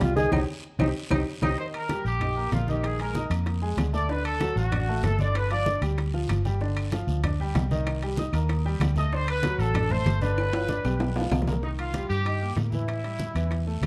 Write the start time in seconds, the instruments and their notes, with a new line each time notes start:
Already playing: grand piano G3 G4 G5
0.00 fingered electric bass C2, trombone F4, high bongo, low bongo, high conga, high timbale, low timbale, short guiro
0.16 grand piano D#3 D#4 D#5, trombone G#4, high conga, short guiro
0.32 fingered electric bass C2, grand piano C4 D#4 G4, trombone D#4, low bongo, high conga, high timbale, long guiro, claves
0.79 fingered electric bass C2, grand piano C4 D#4 G4, trombone D#4, low bongo, high conga, high timbale, long guiro, claves
1.11 fingered electric bass C2, grand piano C4 D#4 G4, trombone D#4, low bongo, high conga, high timbale, long guiro, claves
1.42 fingered electric bass C2, grand piano C4 D#4 G4, trombone D#4, trumpet section D#5, low bongo, high conga, high timbale, long guiro, claves
1.58 grand piano D#3 D#4 D#5, trumpet section C5, high bongo
1.74 trumpet section A#4, high conga, high timbale, claves
1.89 grand piano G3 G4 G5, high bongo, high conga, high timbale, short guiro
2.05 fingered electric bass A#1, trumpet section G4, high conga, short guiro
2.21 grand piano D#4 D#5 D#6, high bongo, high conga, low conga, high timbale, long guiro, claves
2.36 grand piano A#3 A#4 A#5, high conga
2.52 fingered electric bass A#1, trumpet section F4, high bongo, low bongo, high conga, high timbale, low timbale, short guiro
2.68 grand piano D#3 D#4 D#5, trumpet section G4, high conga, short guiro
2.84 trumpet section G#4, high bongo, high timbale, long guiro, claves
2.99 grand piano G#3 G#4 G#5, trumpet section A#4, high bongo, high conga, high timbale
3.15 grand piano D#4 D#5 D#6, high bongo, high conga, short guiro
3.30 fingered electric bass F2, grand piano A#3 A#4 A#5, high timbale, short guiro, claves
3.46 high bongo, high conga, high timbale, long guiro
3.62 grand piano G#3 G#4 G#5, high bongo, high conga
3.77 fingered electric bass D2, high bongo, low bongo, high conga, high timbale, low timbale, short guiro, claves
3.93 grand piano A3 A4 A5, trumpet section D5, high bongo, high conga, short guiro
4.09 grand piano D3 D4 D5, trumpet section B4, high bongo, high conga, long guiro
4.25 trumpet section A4, high conga, high timbale, claves
4.40 grand piano F#3 F#4 F#5, high bongo, high conga, high timbale, short guiro
4.56 fingered electric bass A1, trumpet section F#4, high conga, short guiro
4.72 grand piano D4 D5 D6, high bongo, high conga, low conga, high timbale, long guiro, claves
4.88 grand piano A3 A4 A5, high conga
5.03 fingered electric bass G1, trumpet section A4, high bongo, low bongo, high conga, high timbale, short guiro
5.19 grand piano D3 D4 D5, trumpet section D5, high conga, short guiro
5.35 trumpet section B4, high bongo, high conga, high timbale, long guiro, claves
5.51 grand piano F3 F4 F5, trumpet section D5, high bongo, high conga, high timbale
5.66 grand piano D4 D5 D6, high bongo, high conga, short guiro
5.82 fingered electric bass D2, grand piano G3 G4 G5, high timbale, short guiro, claves
5.98 high bongo, high conga, high timbale, long guiro
6.14 grand piano F3 F4 F5, high bongo, high conga
6.29 fingered electric bass G1, high bongo, low bongo, high conga, high timbale, short guiro, claves
6.45 grand piano G3 G4 G5, high bongo, high conga, short guiro
6.61 grand piano D3 D4 D5, high bongo, high conga, long guiro
6.77 high conga, high timbale, claves
6.92 grand piano F3 F4 F5, high bongo, high conga, high timbale, short guiro
7.07 fingered electric bass D2, high conga, short guiro
7.24 grand piano D4 D5 D6, high bongo, high conga, low conga, high timbale, long guiro, claves
7.39 grand piano G3 G4 G5, high conga
7.55 fingered electric bass C2, high bongo, low bongo, high conga, high timbale, low timbale, short guiro
7.71 grand piano D#3 D#4 D#5, high conga, short guiro
7.86 high bongo, high conga, high timbale, long guiro, claves
8.02 grand piano G3 G4 G5, high bongo, high conga, high timbale
8.17 grand piano D#4 D#5 D#6, high bongo, high conga, short guiro
8.33 fingered electric bass D#2, grand piano A#3 A#4 A#5, high timbale, short guiro, claves
8.49 high bongo, high conga, high timbale, long guiro
8.65 grand piano G3 G4 G5, high bongo, high conga
8.80 fingered electric bass D2, high bongo, low bongo, high conga, high timbale, low timbale, short guiro, claves
8.96 grand piano A3 A4 A5, trumpet section D#5, high bongo, high conga, short guiro
9.12 grand piano D3 D4 D5, trumpet section C5, high bongo, high conga, long guiro
9.27 trumpet section B4, high conga, high timbale, claves
9.43 grand piano F#3 F#4 F#5, high bongo, high conga, high timbale, short guiro
9.59 fingered electric bass A1, trumpet section A4, high conga, short guiro
9.74 grand piano D4 D5 D6, high bongo, high conga, low conga, high timbale, long guiro, claves
9.90 grand piano A3 A4 A5, trumpet section C5, high conga, low conga
10.06 fingered electric bass G1, high bongo, low bongo, high conga, high timbale, short guiro
10.21 grand piano D3 D4 D5, trumpet section B4, high conga, short guiro
10.38 high bongo, high conga, high timbale, long guiro, claves
10.53 grand piano F3 F4 F5, high bongo, high conga, high timbale
10.68 grand piano D4 D5 D6, high bongo, high conga, short guiro
10.85 fingered electric bass B1, grand piano G3 G4 G5, low timbale, short guiro, claves
11.00 high bongo, high conga, low timbale, long guiro
11.16 grand piano F3 F4 F5, high conga, low timbale
11.21 high bongo
11.31 fingered electric bass C2, low bongo, high conga, low timbale, short guiro, claves
11.42 low bongo
11.47 grand piano A#3 A#4 A#5, high conga, low timbale, short guiro
11.52 low bongo
11.63 grand piano D#3 D#4, trumpet section D#4, high bongo, high conga, long guiro
11.78 trumpet section F4, high conga, high timbale, claves
11.94 grand piano G3 G4, high bongo, high conga, high timbale, short guiro
12.10 fingered electric bass G2, trumpet section G4, high conga, short guiro
12.25 grand piano D#4 D#5, high bongo, high conga, high timbale, long guiro, claves
12.41 grand piano A#3 A#4, high conga
12.56 fingered electric bass A2, high bongo, low bongo, high conga, high timbale, low timbale, short guiro
12.72 grand piano E3 E4, trumpet section E4, high conga, short guiro
12.88 high bongo, high conga, high timbale, long guiro, claves
13.04 grand piano G3 G4, high bongo, high conga, high timbale
13.19 high bongo, high conga, short guiro
13.35 fingered electric bass E2, grand piano E3 E4, high timbale, short guiro, claves
13.51 high bongo, high conga, high timbale, long guiro
13.67 grand piano A3 A4, high bongo, high conga
13.81 fingered electric bass D2, high bongo, low bongo, high conga, high timbale, low timbale, short guiro, claves